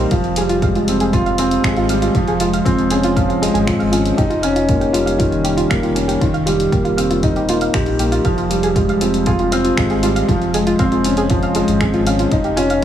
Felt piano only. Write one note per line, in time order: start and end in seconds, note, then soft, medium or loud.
0.00 0.14 D#3 loud
0.00 0.13 G3 loud
0.00 0.14 A#3 medium
0.00 0.14 C4 loud
0.00 0.13 D#4 loud
0.12 0.36 F3 medium
0.38 0.61 G3 loud
0.63 0.87 G#3 medium
0.89 1.12 C4 medium
1.13 1.37 F4 loud
1.39 1.63 C4 loud
1.65 1.89 G#3 medium
1.90 2.14 G3 loud
2.15 2.39 F3 loud
2.41 2.65 G#3 medium
2.65 2.90 C4 loud
2.91 3.15 C#4 medium
3.17 3.41 F3 loud
3.42 3.66 G#3 loud
3.68 3.92 C4 medium
3.93 4.17 C#4 medium
4.18 4.42 D#4 loud
4.44 4.68 C#4 loud
4.69 4.93 A#3 medium
4.94 5.19 G3 loud
5.19 5.44 D#3 loud
5.45 5.69 G3 medium
5.70 5.95 A#3 loud
5.95 6.20 C#4 medium
6.21 6.45 D#3 loud
6.46 6.71 G3 loud
6.72 6.96 A#3 medium
6.97 7.22 C4 medium
7.23 7.47 D#4 loud
7.49 7.73 A#3 medium
7.74 7.88 G4 medium
8.00 8.24 A#3 medium
8.25 8.49 F3 loud
8.50 8.74 G3 loud
8.76 9.00 G#3 medium
9.01 9.25 C4 medium
9.26 9.51 F4 loud
9.52 9.76 C4 loud
9.77 10.01 G#3 medium
10.03 10.27 G3 loud
10.29 10.53 F3 loud
10.54 10.78 G#3 medium
10.79 11.03 C4 loud
11.05 11.29 C#4 medium
11.30 11.54 F3 loud
11.55 11.80 G#3 loud
11.81 12.05 C4 medium
12.06 12.31 C#4 medium
12.32 12.56 D#4 loud
12.57 12.81 C#4 loud